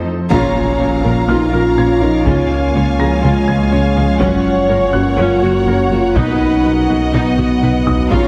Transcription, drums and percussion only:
0.32 taiko
1.04 taiko
2.26 taiko
4.21 taiko
6.16 taiko
7.38 taiko mid
7.63 taiko mid
7.87 taiko low
8.11 taiko

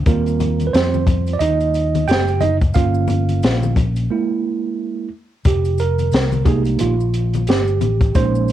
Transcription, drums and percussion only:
0.06 kick, closed hi-hat, maracas
0.26 closed hi-hat, maracas
0.40 closed hi-hat, low conga, maracas
0.59 closed hi-hat, high conga, maracas
0.74 snare, closed hi-hat, maracas
0.94 high conga, maracas
1.07 kick, closed hi-hat, low conga, maracas
1.27 closed hi-hat, maracas
1.40 closed hi-hat, high conga, maracas
1.60 closed hi-hat, maracas
1.74 closed hi-hat, maracas
1.95 closed hi-hat, high conga, maracas
2.08 snare, closed hi-hat, maracas
2.28 closed hi-hat, maracas
2.41 closed hi-hat, high conga, low conga, maracas
2.61 kick, closed hi-hat, maracas
2.74 kick, closed hi-hat, maracas
2.95 maracas
3.08 closed hi-hat, low conga, maracas
3.29 closed hi-hat, high conga, maracas
3.43 snare, closed hi-hat, maracas
3.63 high conga, maracas
3.76 kick, closed hi-hat, low conga, maracas
3.96 closed hi-hat, maracas
5.45 kick, closed hi-hat, maracas
5.65 closed hi-hat, maracas
5.78 closed hi-hat, maracas
5.99 closed hi-hat, high conga, maracas
6.12 snare, closed hi-hat, maracas
6.32 closed hi-hat, high conga, maracas
6.46 kick, closed hi-hat, low conga, maracas
6.65 closed hi-hat, maracas
6.79 closed hi-hat, high conga, maracas
7.00 maracas
7.14 closed hi-hat, maracas
7.34 closed hi-hat, high conga, maracas
7.47 snare, closed hi-hat, maracas
7.68 maracas
7.81 closed hi-hat, high conga, low conga, maracas
8.01 kick, closed hi-hat, maracas
8.15 kick, closed hi-hat, maracas
8.35 maracas
8.48 maracas

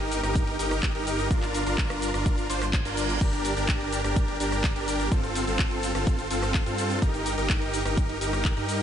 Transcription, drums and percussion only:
0.12 open hi-hat, shaker
0.23 cross-stick, closed hi-hat, shaker
0.35 kick, closed hi-hat, shaker
0.47 closed hi-hat
0.59 open hi-hat, shaker
0.71 cross-stick, closed hi-hat, shaker
0.83 kick, clap, closed hi-hat, shaker
0.95 closed hi-hat
1.07 open hi-hat, shaker
1.19 closed hi-hat, shaker
1.31 kick, closed hi-hat, shaker
1.43 clap, closed hi-hat, shaker
1.54 open hi-hat, shaker
1.66 closed hi-hat, shaker
1.78 kick, clap, closed hi-hat, shaker
1.90 cross-stick, closed hi-hat, shaker
2.02 open hi-hat, shaker
2.14 cross-stick, closed hi-hat, shaker
2.26 kick, closed hi-hat, shaker
2.38 closed hi-hat, shaker
2.50 open hi-hat, shaker
2.62 cross-stick, closed hi-hat, shaker
2.73 kick, clap, closed hi-hat, shaker
2.85 closed hi-hat, shaker
2.97 open hi-hat, shaker
3.09 closed hi-hat, shaker
3.21 kick, closed hi-hat, crash, shaker
3.33 closed hi-hat, shaker
3.45 open hi-hat, shaker
3.57 closed hi-hat, shaker
3.69 kick, clap, closed hi-hat, shaker
3.81 closed hi-hat
3.92 open hi-hat, shaker
4.04 cross-stick, closed hi-hat, shaker
4.16 kick, closed hi-hat, shaker
4.28 closed hi-hat
4.40 open hi-hat, shaker
4.52 cross-stick, closed hi-hat, shaker
4.64 kick, clap, closed hi-hat, shaker
4.76 closed hi-hat
4.88 open hi-hat, shaker
5.00 closed hi-hat, shaker
5.12 kick, closed hi-hat, shaker
5.24 closed hi-hat, shaker
5.35 open hi-hat, shaker
5.47 closed hi-hat, shaker
5.59 kick, clap, closed hi-hat, shaker
5.71 closed hi-hat
5.83 open hi-hat, shaker
5.95 cross-stick, closed hi-hat, shaker
6.07 kick, closed hi-hat, shaker
6.19 closed hi-hat, shaker
6.31 open hi-hat, shaker
6.43 cross-stick, closed hi-hat, shaker
6.54 kick, clap, closed hi-hat, shaker
6.66 closed hi-hat, shaker
6.78 open hi-hat, shaker
6.90 closed hi-hat, shaker
7.02 kick, closed hi-hat, shaker
7.14 closed hi-hat, shaker
7.26 open hi-hat, shaker
7.38 closed hi-hat, shaker
7.50 kick, clap, closed hi-hat, shaker
7.62 closed hi-hat
7.74 open hi-hat, shaker
7.85 cross-stick, closed hi-hat, shaker
7.97 kick, closed hi-hat, shaker
8.09 closed hi-hat
8.21 open hi-hat, shaker
8.33 cross-stick, closed hi-hat, shaker
8.45 kick, clap, closed hi-hat, shaker
8.57 closed hi-hat
8.69 open hi-hat, shaker

